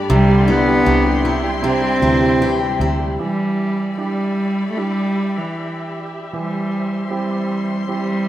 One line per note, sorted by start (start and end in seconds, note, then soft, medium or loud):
0.00 0.17 G2 medium
0.00 0.12 G3 medium
0.00 0.47 D4 medium
0.00 2.41 G4 medium
0.00 3.16 D5 medium
0.10 0.83 C2 loud
0.10 3.19 C3 medium
0.10 0.47 C3 medium
0.10 1.61 D3 medium
0.10 0.51 G3 medium
0.10 1.61 D4 medium
0.10 3.17 E4 medium
0.10 3.16 G5 medium
0.10 3.17 C6 medium
0.29 0.66 G3 medium
0.48 0.85 C3 soft
0.48 1.26 B3 loud
0.48 1.25 E4 medium
0.67 1.04 G3 soft
0.86 1.98 C2 medium
0.86 1.23 C3 medium
0.86 1.63 D4 medium
1.05 1.42 G3 medium
1.24 1.61 C3 medium
1.24 2.02 E4 medium
1.43 1.81 G3 soft
1.62 2.00 C3 medium
1.62 2.77 C4 loud
1.62 3.78 D4 medium
1.82 2.20 G3 soft
2.02 2.76 D2 medium
2.02 2.40 C3 medium
2.02 2.79 E3 medium
2.02 2.79 E4 medium
2.02 2.81 E4 medium
2.21 2.59 G3 medium
2.41 2.79 C3 medium
2.41 3.78 G4 medium
2.61 2.99 G3 soft
2.80 3.17 D2 medium
2.80 3.18 C3 medium
2.80 3.78 E4 medium
3.00 3.19 G3 soft
3.20 6.29 E3 soft
3.20 3.95 G3 medium
3.20 8.28 G4 medium
3.20 6.30 D5 medium
3.20 8.28 E5 medium
3.20 6.30 B5 medium
3.98 4.66 G3 medium
3.98 4.74 D4 soft
3.98 4.74 E4 soft
3.98 4.74 G4 soft
4.70 4.79 A3 medium
4.76 5.39 G3 medium
4.76 5.52 D4 soft
4.76 5.53 E4 soft
4.76 5.53 G4 soft
5.38 5.95 E3 medium
6.32 8.28 E3 medium
6.32 7.08 G3 medium
6.32 8.28 C5 medium
6.32 8.28 C6 medium
7.11 7.85 G3 medium
7.11 7.86 C4 soft
7.11 7.86 E4 soft
7.11 7.86 G4 soft
7.88 8.28 G3 medium
7.88 8.28 C4 soft
7.88 8.28 E4 soft
7.88 8.28 G4 soft